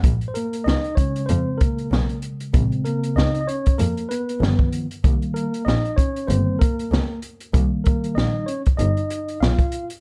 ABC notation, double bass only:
X:1
M:4/4
L:1/8
Q:"Swing 16ths" 1/4=96
K:Bbdor
V:1 name="Double bass" clef=bass
B,,,2 D,,2 F,,2 _C,,2 | B,,,2 D,,2 F,,2 G,,,2 | C,,2 B,,,2 G,,,2 D,,2 | C,,2 B,,,2 G,,,2 _C,,2 |]